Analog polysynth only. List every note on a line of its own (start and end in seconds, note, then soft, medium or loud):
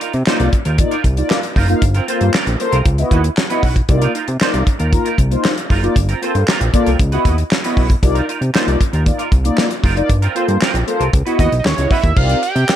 0.26 0.49 A#3 medium
0.26 0.49 D#4 medium
0.26 0.49 F4 medium
0.26 0.49 D5 loud
0.78 0.95 A#3 medium
0.78 0.95 D#4 medium
0.78 0.95 F4 medium
0.78 0.96 D5 loud
1.17 1.39 A#3 medium
1.17 1.40 D#4 medium
1.17 1.40 F4 medium
1.17 1.40 D5 loud
1.69 1.82 A#3 loud
1.69 1.82 D#4 loud
1.69 1.82 F4 loud
1.69 1.82 F5 loud
2.07 2.30 A#3 medium
2.07 2.30 F4 medium
2.07 2.30 A4 medium
2.07 2.30 C5 medium
2.60 2.76 A#3 loud
2.60 2.76 F4 medium
2.60 2.76 A4 loud
2.60 2.77 C5 loud
2.98 3.20 B3 loud
2.98 3.20 E4 medium
2.98 3.21 F#4 medium
2.98 3.21 D#5 loud
3.50 3.67 B3 medium
3.50 3.67 E4 medium
3.50 3.67 F#4 medium
3.50 3.67 D#5 loud
3.88 4.11 A#3 loud
3.88 4.11 D#4 medium
3.88 4.11 F4 medium
3.88 4.11 D5 loud
4.40 4.63 A#3 medium
4.40 4.63 D#4 medium
4.40 4.63 F4 medium
4.40 4.63 D5 loud
4.92 5.09 A#3 medium
4.92 5.09 D#4 medium
4.92 5.09 F4 medium
4.92 5.09 A#4 loud
5.31 5.53 A#3 medium
5.31 5.53 D#4 medium
5.31 5.53 F4 medium
5.31 5.53 C5 loud
5.82 5.96 A#3 loud
5.82 5.96 D#4 loud
5.82 5.96 F4 loud
5.82 5.96 D5 loud
6.21 6.44 A#3 medium
6.21 6.44 F4 medium
6.21 6.44 A4 medium
6.21 6.44 C5 medium
6.73 6.90 A#3 loud
6.73 6.90 F4 medium
6.73 6.90 A4 loud
6.73 6.90 D5 loud
7.12 7.34 B3 medium
7.12 7.34 E4 medium
7.12 7.34 F#4 medium
7.12 7.35 D#5 loud
7.64 7.81 B3 medium
7.64 7.81 E4 medium
7.64 7.81 F#4 medium
7.64 7.81 D#5 loud
8.02 8.25 A#3 medium
8.02 8.25 D#4 medium
8.02 8.25 F4 medium
8.02 8.25 D5 loud
8.54 8.76 A#3 medium
8.54 8.77 D#4 medium
8.54 8.77 F4 medium
8.54 8.77 D5 loud
9.06 9.23 A#3 medium
9.06 9.23 D#4 medium
9.06 9.23 F4 medium
9.06 9.23 D5 medium
9.44 9.67 A#3 medium
9.44 9.67 D#4 medium
9.44 9.67 F4 medium
9.44 9.67 D5 loud
9.96 10.09 A#3 loud
9.96 10.09 D#4 loud
9.96 10.09 F4 loud
9.96 10.10 D5 loud
10.35 10.57 A#3 medium
10.35 10.57 F4 medium
10.35 10.58 A4 medium
10.35 10.58 C5 loud
10.87 11.04 A#3 loud
10.87 11.04 F4 medium
10.87 11.04 A4 loud
10.87 11.04 C5 loud
11.25 11.48 B3 medium
11.25 11.48 E4 medium
11.25 11.48 F#4 medium
11.25 11.48 D#5 loud
11.77 11.94 B3 medium
11.77 11.94 E4 medium
11.77 11.94 F#4 medium
11.77 11.95 D#5 loud
12.16 12.38 C4 medium
12.16 12.39 D#4 medium
12.16 12.39 G4 medium
12.16 12.39 A#4 medium
12.16 12.39 D5 medium
12.68 12.76 C4 medium
12.68 12.76 D#4 medium
12.68 12.76 G4 medium
12.68 12.76 A#4 medium
12.68 12.76 D5 medium